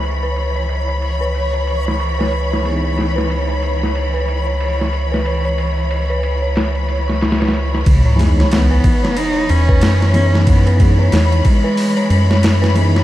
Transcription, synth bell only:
X:1
M:4/4
L:1/16
Q:"Swing 16ths" 1/4=92
K:C#m
V:1 name="Synth bell"
z B z c z c z B z c z c z B z c | z c z B z c z c z B z c z c z B | z c z c z B z c z c z c' z B z c | z c z c z B z c z c z B z c z c |
z B z c z c z B z c z c z B z c |]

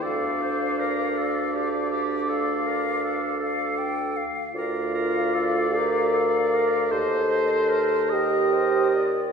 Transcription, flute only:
X:1
M:12/8
L:1/8
Q:3/8=52
K:Dm
V:1 name="Flute"
f4- f z f3 f g f | [K:Bb] f6 e3 e c d |]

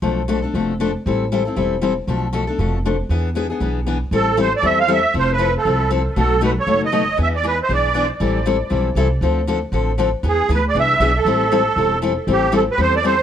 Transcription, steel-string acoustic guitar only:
X:1
M:4/4
L:1/8
Q:"Swing" 1/4=235
K:Am
V:1 name="Steel-string acoustic guitar"
[B,,F,A,DA] z [B,,F,A,DA] [A,DA] [B,,F,A,DA] z [B,,F,A,DA] z | [E,G,CEA] z [E,G,CEA] [CEA] [E,G,CEA] z [E,G,CEA] z | [B,,F,A,DA] z [B,,F,A,DA] [A,DA] [B,,F,A,DA] z [B,,F,A,DA] z | [E,B,D^G] z [E,B,DG] [B,DG] [E,B,DG] z [E,B,DG] z |
[E,G,CEA] z [E,G,CEA] z [E,G,CEA] z [E,G,CEA] z | [F,CEA] z [F,CEA] z [F,CEA] z [F,CEA] z | [B,,^F,A,^D^F] z [B,,F,A,DF] z [B,,F,A,DF] z [B,,F,A,DF] z | [E,B,D^G] z [E,B,DG] z [E,B,DG] z [E,B,DG] z |
[E,G,CEA] z [E,G,CEA] z [E,G,CEA] z [E,G,CEA] z | [D,F,CDA] z [D,F,CDA] z [D,F,CDA] z [D,F,CDA] z | [E,B,D^G] z [E,B,DG] z [E,B,DG] z [E,B,DG] z | [E,G,CEA] z [E,G,CEA] z [E,G,CEA] z [E,G,CEA] z |
[E,G,CEA] z [E,G,CEA] z [E,G,CEA] z [E,G,CEA] z |]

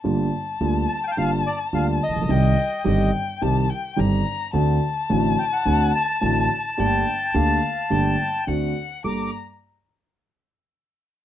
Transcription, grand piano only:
X:1
M:4/4
L:1/16
Q:1/4=107
K:Gm
V:1 name="Grand piano" clef=bass
[G,,,G,,D,G,B,F]2 z2 [D,,D,G,B,F]2 z2 [G,,,G,,D,G,B,F]2 z2 [D,,D,G,B,F]2 z/2 A,,,/2 B,,,/2 =B,,,/2 | [C,,C,E,G,CG]2 z2 [G,,,G,,E,G,CG]2 z2 [C,,C,E,G,CG]2 z2 [G,,,G,,E,G,CG]2 z2 | [D,,D,A,C^F]2 z2 [A,,,A,,D,A,CF]2 z2 [D,,D,A,CF]2 z2 [A,,,A,,D,A,CF]2 z2 | [G,,,G,,D,A,B,G]2 z2 [D,,D,A,B,G]2 z2 [G,,,G,,D,A,B,G]2 z2 [D,,D,A,C^F]2 z2 |
[G,,B,GA]2 z12 z2 |]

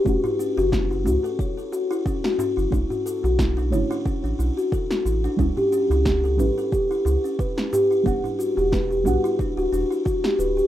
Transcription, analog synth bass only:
X:1
M:4/4
L:1/16
Q:"Swing 16ths" 1/4=90
K:Edor
V:1 name="Analog synth bass" clef=bass
F,,, z2 F,,,3 C,, z8 F,,, | B,,, z2 B,,,3 F,,, z2 A,,, B,,, z3 A,,, z | C,, z2 C,,3 A,,, z3 C,, z4 z | E,,, z2 E,,,3 B,,, z2 D,,, E,,, z3 D,,, z |]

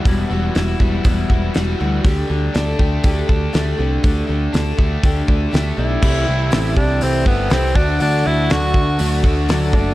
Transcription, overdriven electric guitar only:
X:1
M:4/4
L:1/8
Q:1/4=121
K:Dmix
V:1 name="Overdriven electric guitar" clef=bass
[E,,E,G,E] E, E G, E, E G, E, | D, D, D A, D, D A, D, | D, D, D A, D, D A, D, | [C,E,G,CE]4- [C,E,G,CE] [C,E,G,CE] [C,E,G,CE] [D,A,DF]- |
[D,A,DF]4 [D,A,DF] [D,A,DF]2 z |]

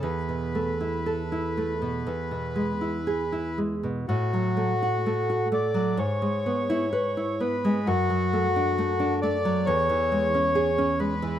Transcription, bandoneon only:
X:1
M:4/4
L:1/8
Q:1/4=63
K:Emix
V:1 name="Bandoneon"
B6- B z | F3 d c3 B | F3 d c3 B |]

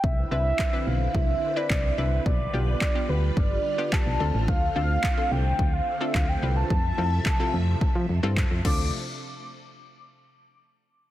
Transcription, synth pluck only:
X:1
M:4/4
L:1/16
Q:1/4=108
K:C
V:1 name="Synth pluck"
z2 [CDEB]2 z [CDEB]3 z3 [CDEB]2 z [CDEB]2 | z2 [B,DFG]2 z [B,DFG]3 z3 [B,DFG]2 z [CDFA]2- | [CDFA] z [CDFA]2 z [CDFA]3 z3 [CDFA]2 z [CDFB]2 | z2 [CEFA]2 z [CEFA]3 z3 [CEFA]2 z [CDFA]2 |
z16 |]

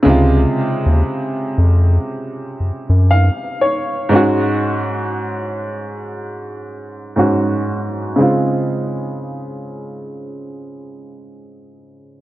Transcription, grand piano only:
X:1
M:4/4
L:1/8
Q:"Swing 16ths" 1/4=59
K:Db
V:1 name="Grand piano"
z6 f d | z8 | z8 |]
V:2 name="Grand piano" clef=bass
[C,D,A,F]8 | [A,,A,DG]6 [A,,A,DG]2 | [D,A,CF]8 |]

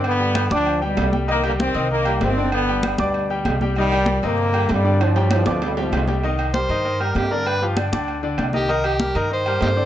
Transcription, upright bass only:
X:1
M:4/4
L:1/8
Q:1/4=194
K:Cm
V:1 name="Upright bass" clef=bass
G,,3 D,,3 C,,2- | C,,3 C,,3 G,,,2- | G,,,3 D,,3 C,,2- | C,,3 G,,3 G,,2- |
G,,3 D,,3 C,,2- | C,,3 G,,3 G,,2- | G,,3 D,,3 C,,2- | C,,3 G,,3 G,,2 |]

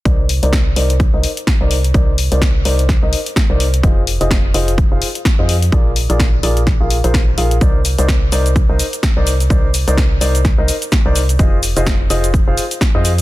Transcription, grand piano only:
X:1
M:4/4
L:1/16
Q:"Swing 16ths" 1/4=127
K:Cm
V:1 name="Grand piano"
[EBcd] z2 [EBcd] z2 [EBcd] z2 [EBce] z3 [EBcd] z2 | [EBcd] z2 [EBcd] z2 [EBcd] z2 [EBce] z3 [EBcd] z2 | [FAce] z2 [FAce] z2 [FAce] z2 [FAcf] z3 [FAce] z2 | [FABd] z2 [FABd] z2 [FABd] z2 [FABf] z [FABc] z2 [FABf] z |
[EBcd] z2 [EBcd] z2 [EBcd] z2 [EBce] z3 [EBcd] z2 | [EBcd] z2 [EBcd] z2 [EBcd] z2 [EBce] z3 [EBcd] z2 | [FAce] z2 [FAce] z2 [FAce] z2 [FAcf] z3 [FAce] z2 |]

